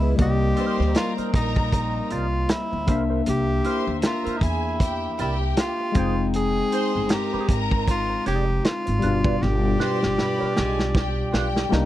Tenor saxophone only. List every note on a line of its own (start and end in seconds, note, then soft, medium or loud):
0.00 0.15 E4 medium
0.21 0.93 G4 loud
0.97 1.13 F4 loud
1.35 2.14 D#4 medium
2.12 2.52 F4 medium
2.51 3.02 E4 loud
3.29 4.01 G4 loud
4.07 4.39 F4 medium
4.38 4.45 D#4 medium
4.44 5.20 E4 loud
5.22 5.38 E4 medium
5.60 6.31 F4 loud
6.36 7.14 G#4 loud
7.13 7.63 G4 loud
7.90 8.25 F4 loud
8.27 8.67 G4 loud
8.65 9.44 F4 loud
9.42 11.72 G4 loud